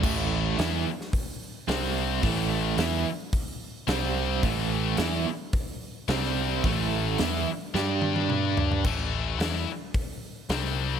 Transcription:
0.03 A1 A2 E3 A3, kick, crash
0.59 E2 E3 B3 E4, snare, open hi-hat
1.01 snare
1.13 kick, open hi-hat
1.68 C2 C3 G3 C4, snare, open hi-hat
1.84 snare
2.23 A1 A2 E3 A3, kick, open hi-hat
2.77 E2 E3 B3 E4, snare, open hi-hat
3.33 kick, open hi-hat
3.87 C2 C3 G3 C4, snare, open hi-hat
4.43 A1 A2 E3 A3, kick, open hi-hat
4.97 E2 E3 B3 E4, snare, open hi-hat
5.53 kick, open hi-hat
6.08 C2 C3 G3 C4, snare, open hi-hat
6.24 snare
6.64 A1 A2 E3 A3, kick, open hi-hat
7.18 E2 E3 B3 E4, snare, open hi-hat
7.74 G2 G3 D4 G4, snare
8.02 high tom
8.16 high tom
8.30 mid tom
8.57 floor tom
8.72 floor tom
8.85 A1 A2 E3 A3, kick, crash
9.39 E2 E3 B3 E4, snare, open hi-hat
9.94 kick, open hi-hat
10.49 C2 C3 G3 C4, snare, open hi-hat
10.64 snare

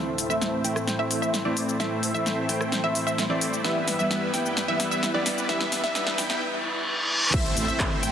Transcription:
Already playing: A2 E3 A3 C4 E4 C5 E5, riser
0.18 open hi-hat, shaker
0.29 E3 A3 C4 E4 C5 E5, shaker
0.41 snare, shaker
0.64 E3 A3 C4 E4 C5 G5, open hi-hat, shaker
0.76 cross-stick, shaker
0.88 snare, shaker
0.99 E3 A3 C4 E4 C5 E5
1.11 open hi-hat, shaker
1.22 A3 C4 E4 C5 E5, shaker
1.34 snare, shaker
1.45 E3 A3 C4 E4 C5 D5
1.57 open hi-hat, shaker
1.69 shaker
1.79 E3 A3 C4 E4 C5 E5, snare, shaker
2.03 open hi-hat, shaker
2.14 E3 A3 C4 E4 C5 E5, shaker
2.26 snare, shaker
2.49 E3 A3 C4 E4 C5 G5, open hi-hat, shaker
2.61 cross-stick, shaker
2.72 snare, shaker
2.83 E3 A3 C4 E4 C5 E5
2.95 open hi-hat, shaker
3.07 A3 C4 E4 C5 E5, shaker
3.18 snare, shaker
3.29 E3 A3 C4 E4 C5 D5
3.41 open hi-hat, shaker
3.53 shaker
3.64 G2 E3 G3 B3 E4 B4 E5, snare, shaker
3.88 snare, open hi-hat, shaker
3.99 E3 G3 B3 E4 B4 E5, shaker
4.11 snare, shaker
4.33 E3 G3 B3 E4 B4 G5, snare, open hi-hat, shaker
4.46 shaker
4.57 snare, shaker
4.68 E3 G3 B3 E4 B4 E5
4.80 snare, open hi-hat, shaker
4.91 G3 B3 E4 B4 E5, shaker
5.03 snare, shaker
5.14 E3 G3 B3 E4 B4 D5
5.26 snare, open hi-hat, shaker
5.38 shaker
5.48 E3 G3 B3 E4 B4 E5, snare, shaker
5.61 snare
5.72 snare, open hi-hat, shaker
5.83 E3 G3 B3 E4 B4 E5, snare, shaker
5.95 snare, shaker
6.07 snare
6.18 E3 G3 B3 E4 B4 G5, snare, open hi-hat, shaker
6.30 snare, shaker
6.41 reverse cymbal
7.34 E3 A3 C4 E4 C5 E5, kick, crash, impact, shaker
7.46 shaker
7.57 A1, open hi-hat, shaker
7.68 A3 C4 E4 C5 E5, shaker
7.80 kick, clap, shaker
8.03 A1 A3 C4 E4 C5 G5, open hi-hat, shaker

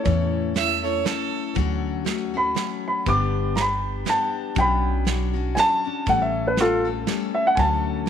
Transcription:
0.04 E2 A2 E3 A3 C#4 E4 A4 C#5, kick, closed hi-hat
0.54 A3 C#4 E4 A4 E5, snare, closed hi-hat
0.83 A3 C#4 E4 A4 C#5
1.04 A3 C#4 E4 A4, snare, closed hi-hat
1.55 D2 D3 F#3 A3 C#4 F#4, kick, closed hi-hat
2.05 F#3 A3 C#4 F#4, snare, closed hi-hat
2.34 A3 C#4 F#4 B5
2.55 F#3 A3 C#4 F#4, snare, closed hi-hat
2.88 B5
3.06 G1 G2 D3 G3 B3 D4 G4 D6, kick, closed hi-hat
3.55 G3 B3 D4 G4 A#5, snare, closed hi-hat
3.61 B5
4.05 G3 B3 D4 G4, snare, closed hi-hat
4.09 A5
4.55 B1 B2 F#3 C#4 D4 G5, kick, closed hi-hat
4.60 B5
5.05 F#3 C#4 D4 F#4, snare, closed hi-hat
5.34 C#4 D4 F#4
5.55 F#3 C#4 D4 F#4 G#5, snare, closed hi-hat
5.59 A5
5.84 C#4 D4 F#4
6.06 A1 A2 E3 G3 A3 C#4 A4 F#5, kick, closed hi-hat
6.22 E5
6.47 B4
6.57 G3 A3 C#4 F4 A4, snare, closed hi-hat
6.61 A4
6.85 G3 A3 C#4 A4
7.07 G3 A3 C#4 A4, snare, closed hi-hat
7.35 E5
7.47 F#5
7.55 D2 D3 F#3 A3 C#4 A4 G#5, kick, closed hi-hat
7.59 A5
8.06 F#3

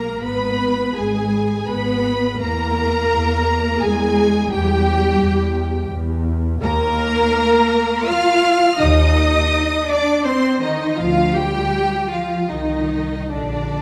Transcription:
Already playing: B1 A#3 A#4 A#5
0.22 G#1 B3 B4 B5
0.96 G#1 G#3 G#4 G#5
1.68 G#1 B3 B4 B5
2.40 E2 A#3 A#4 A#5
3.12 E2
3.82 E2 G#3 G#4 G#5
4.51 E2 G3 G4 G5
5.20 E2
5.91 E2
6.61 D#2 A#3 A#4 A#5
8.07 F4 F5 F6
8.79 D#2 D#4 D#5 D#6
9.87 D4 D5 D6
10.24 C4 C5 C6
10.61 D#3 D#4 D#5
10.97 D2 F3 F4 F5
11.35 G3 G4 G5
12.10 F3 F4 F5
12.49 C2 D#3 D#4 D#5
13.30 A#1 D3 D4 D5

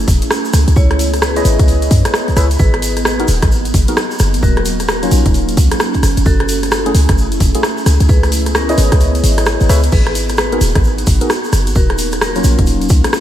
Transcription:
Already playing: A3 C#4 E4 G#4
0.08 E1, kick, open hi-hat, shaker
0.22 closed hi-hat, shaker
0.31 cross-stick, shaker
0.45 shaker
0.53 C#2 B3 G#4 D#5, cross-stick, open hi-hat, shaker
0.68 C#2, closed hi-hat, shaker
0.76 C#2 E4 C#5, kick, shaker
0.91 cross-stick, closed hi-hat
0.99 open hi-hat, shaker
1.14 cross-stick, closed hi-hat, shaker
1.22 G#4 B4, cross-stick, shaker
1.36 E4 G#4 B4 C#5 D#5, closed hi-hat, shaker
1.45 G#1, open hi-hat, shaker
1.59 C#2, kick, closed hi-hat, shaker
1.68 open hi-hat, shaker
1.82 closed hi-hat, shaker
1.91 F#2, kick, open hi-hat, shaker
2.05 cross-stick, closed hi-hat, shaker
2.14 cross-stick, shaker
2.28 kick, closed hi-hat, shaker
2.36 C#2 E4 G#4 B4 C#5 E5, cross-stick, open hi-hat, shaker
2.51 closed hi-hat, shaker
2.59 G#1 F#3 A#3 G#4 B4, kick, shaker
2.74 cross-stick, closed hi-hat
2.82 open hi-hat, shaker
2.97 cross-stick, closed hi-hat, shaker
3.05 G#4 B4, cross-stick, shaker
3.20 B3 D#4 F#4 G#4 A#4, closed hi-hat
3.28 D#1, open hi-hat, shaker
3.42 G#1, kick, cross-stick, closed hi-hat, shaker
3.52 shaker
3.65 closed hi-hat, shaker
3.74 F#1, kick, open hi-hat, shaker
3.87 B3 D#4 F#4 G#4 A#4, closed hi-hat, shaker
3.97 cross-stick, shaker
4.11 shaker
4.19 F#1, cross-stick, open hi-hat, shaker
4.34 G#1, closed hi-hat, shaker
4.43 D#1 C#4 F4 F#4 A#4, kick, shaker
4.57 cross-stick, closed hi-hat
4.65 open hi-hat, shaker
4.80 cross-stick, closed hi-hat, shaker
4.88 F#4 A#4, cross-stick, shaker
5.03 F#3 A#3 C#4 D#4 F4, closed hi-hat, shaker
5.11 A#1, open hi-hat, shaker
5.25 D#1, kick, closed hi-hat, shaker
5.34 open hi-hat, shaker
5.49 closed hi-hat, shaker
5.57 C#2, kick, open hi-hat, shaker
5.71 cross-stick, closed hi-hat, shaker
5.80 cross-stick, shaker
5.94 kick, closed hi-hat, shaker
6.03 F#1 A3 E4 G#4, cross-stick, open hi-hat, shaker
6.17 F#1, closed hi-hat, shaker
6.26 F#1 F#4 A4, kick, shaker
6.40 cross-stick, closed hi-hat
6.49 open hi-hat, shaker
6.63 cross-stick, closed hi-hat, shaker
6.71 F#4 A4, cross-stick, shaker
6.86 A3 C#4 E4 F#4 G#4, closed hi-hat
6.95 C#2, open hi-hat, shaker
7.09 F#1, kick, cross-stick, closed hi-hat, shaker
7.18 shaker
7.32 closed hi-hat, shaker
7.40 E1, kick, open hi-hat, shaker
7.55 A3 C#4 E4 F#4 G#4, closed hi-hat, shaker
7.63 cross-stick, shaker
7.78 shaker
7.86 C#2 B3 D#5, cross-stick, open hi-hat, shaker
8.00 C#2, closed hi-hat, shaker
8.09 C#2 G#4 B4, kick, shaker
8.23 cross-stick, closed hi-hat, shaker
8.32 open hi-hat, shaker
8.46 cross-stick, closed hi-hat, shaker
8.55 C#4 A#4, cross-stick, shaker
8.69 E4 G#4 B4 C#5 D#5, closed hi-hat, shaker
8.78 G#1, open hi-hat, shaker
8.92 C#2, kick, cross-stick, closed hi-hat, shaker
9.00 open hi-hat, shaker
9.15 closed hi-hat, shaker
9.24 G#1, open hi-hat, shaker
9.38 cross-stick, closed hi-hat, shaker
9.46 cross-stick, shaker
9.61 G#1, closed hi-hat, shaker
9.69 C#2 E4 G#4 B4 C#5 E5, cross-stick, open hi-hat, shaker
9.83 closed hi-hat, shaker
9.92 G#1 A#3 D#4 F#4 G#4 B4, kick, crash, shaker
10.07 cross-stick, closed hi-hat
10.15 open hi-hat, shaker
10.29 cross-stick, closed hi-hat, shaker
10.37 G#4 B4, cross-stick, shaker
10.52 B3 D#4 F#4 G#4 A#4, closed hi-hat
10.61 D#1, open hi-hat, shaker
10.75 G#1, kick, cross-stick, closed hi-hat, shaker
10.84 shaker
10.98 closed hi-hat, shaker
11.07 F#1, kick, open hi-hat, shaker
11.21 B3 D#4 F#4 G#4 A#4, closed hi-hat, shaker
11.30 cross-stick, shaker
11.44 shaker
11.53 F#1, cross-stick, open hi-hat, shaker
11.67 G#1, closed hi-hat, shaker
11.75 D#1 F#3 A#3 C#4 F4 F#4 A#4, kick, shaker
11.90 cross-stick, closed hi-hat
11.98 open hi-hat, shaker
12.12 cross-stick, closed hi-hat, shaker
12.21 F#4 A#4, cross-stick, shaker
12.35 F#3 A#3 C#4 D#4 F4, closed hi-hat, shaker
12.44 A#1, open hi-hat, shaker
12.59 D#1, kick, closed hi-hat, shaker
12.66 open hi-hat, shaker
12.82 closed hi-hat, shaker
12.89 C#2, kick, open hi-hat, shaker
13.04 cross-stick, closed hi-hat, shaker
13.13 cross-stick, shaker

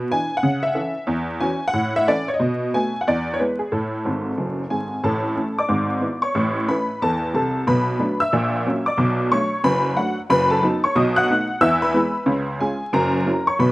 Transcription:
Already playing: B2
0.11 E3 D4 E4 G#5
0.37 F#5
0.43 C#3
0.63 E5
0.75 E3 C#4 A4
1.07 E2
1.40 E3 C#4 F#4 G#5
1.68 F#5
1.73 A2
1.96 E5
2.08 E3 C#4 A4 D5
2.28 C#5
2.34 D#5
2.40 B2
2.74 A3 B3 F#4 G#5
3.01 F#5
3.07 E2 D5
3.34 C#5
3.40 G#3 B3 E4 B4
3.59 G#4
3.72 A2 A4
4.05 G#1 G#2
4.38 F#1 F#2
4.70 G#1 G#2 G#4 G#5
5.04 A1 A2 A4 A5
5.36 A3 C#4 E4
5.59 D5 D6
5.68 G#1 G#2
6.00 B3 E4
6.22 C#5 C#6
6.35 A1 A2
6.68 A3 C#4 E4 B4 B5
7.02 E2 E3 A4 A5
7.34 C2 C3 A4 A5
7.67 B1 B2 B4 B5
7.99 F#3 A3 D4
8.20 E5 E6
8.33 A#1 A#2
8.66 F#3 A#3 C#4
8.86 D5 D6
8.98 B1 B2
9.31 F#3 A3 D4 C#5 C#6
9.64 F#1 F#2 B4 B5
9.96 F#3 A3 D4 F#4 F#5
10.30 F#1 F#2 B4 B5
10.50 A4 A5
10.63 F#3 B3 D#4
10.84 C#5 C#6
10.95 B1 B2 D#5 D#6
11.16 F#5 F#6
11.29 A3 B3 D#4
11.61 E2 E3 E5 E6
11.82 B4 B5
11.94 G#3 B3 E4
12.26 C#2 C#3
12.60 G#3 C#4 F4 G#4 G#5
12.93 F#1 F#2 A#4 A#5
13.26 F#3 C#4 E4
13.47 C#5 C#6
13.59 B1 B2 B4 B5

